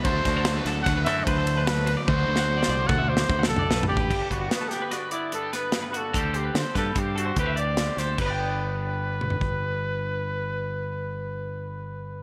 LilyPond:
<<
  \new Staff \with { instrumentName = "Clean electric guitar" } { \time 5/4 \key g \major \tempo 4 = 147 a'8 fis'16 a'8 b'16 a'8 b'16 b'16 a'8 b'16 a'8 b'16 a'8 b'16 d''16 | b'8 a'16 fis''8 d''16 d''8 a'16 e''16 d''8 b'16 fis''8 d''16 b'8 d''16 b'16 | g'16 a'16 b'16 fis'8 a'16 g'16 b'16 d''16 b'16 d''8 b'16 g'16 b'8 g'16 b'16 fis'8 | a'8 c''16 b'16 a'8 b'8 c''8 a'16 c''8 e''16 d''8 c''8 a'8 |
<b' d'' g''>1~ <b' d'' g''>4~ | <b' d'' g''>1~ <b' d'' g''>4 | }
  \new Staff \with { instrumentName = "Trumpet" } { \time 5/4 \key g \major c''4. r8 fis''8 e''8 c''4 b'8. r16 | c''2 fis''8 c''4 a'4 g'8~ | g'8 fis'8 b'8 g'8 fis'8 e'8 a'8 b'4 a'8~ | a'8 g'8 c''8 a'8 g'8 fis'8 b'8 d''4 c''8 |
b'1~ b'4~ | b'1~ b'4 | }
  \new Staff \with { instrumentName = "Clean electric guitar" } { \time 5/4 \key g \major << { r1 r4 | r1 r4 | r8 d'8 b8 d'8 d'8 b8 d'8 b4 d'8 | <g c' g'>8 c'8 c'8 g'8 c'8 c'8 g'8 c'4 g'8 |
<d b d'>1~ <d b d'>4~ | <d b d'>1~ <d b d'>4 | } \\ { r1 r4 | r1 r4 | g,4. d4. g,4 g,4 | d4. g4. a,4 d4 |
g,1~ g,4~ | g,1~ g,4 | } >> }
  \new Staff \with { instrumentName = "Overdriven electric guitar" } { \time 5/4 \key g \major <d fis a d' fis' c''>1~ <d fis a d' fis' c''>4 | <d fis a d' fis' c''>1~ <d fis a d' fis' c''>4 | r1 r4 | r1 r4 |
r1 r4 | r1 r4 | }
  \new Staff \with { instrumentName = "Fingered electric bass" } { \clef bass \time 5/4 \key g \major d,8 d,4 d,8 d,8 fis,8 d,2 | d,8 d,4 c,8 d,4 d,8 c,8 b,,8 a,,8 | g,,16 r16 g,,8 r1 | d,4 d16 r16 g,8 g,4 d,4. d,8 |
g,,1~ g,,4~ | g,,1~ g,,4 | }
  \new DrumStaff \with { instrumentName = "Drums" } \drummode { \time 5/4 <bd cymr>8 <bd cymr sn>8 <cymr sn>8 <cymr sn>8 <bd cymr sn>8 <cymr sn>8 <bd cymr>8 cymr8 <cymr sn>8 cymr8 | \tuplet 3/2 { <bd tommh>8 r8 sn8 r8 sn8 r8 <bd toml>8 r8 sn8 bd8 sn8 tomfh8 sn8 tomfh8 bd8 } | <cymc bd>8 <hh bd>8 <hh sn>8 <hh sn>8 <hh sn>8 hh8 hh8 <hh sn>8 <hh sn>8 hh8 | <hh bd>8 hh8 <hh sn>8 <hh bd sn>8 <hh bd>8 hh8 <hh bd>8 hh8 <hh sn>8 <hh sn>8 |
<cymc bd>4 r4 r8 toml16 tomfh16 bd4 r4 | r4 r4 r4 r4 r4 | }
>>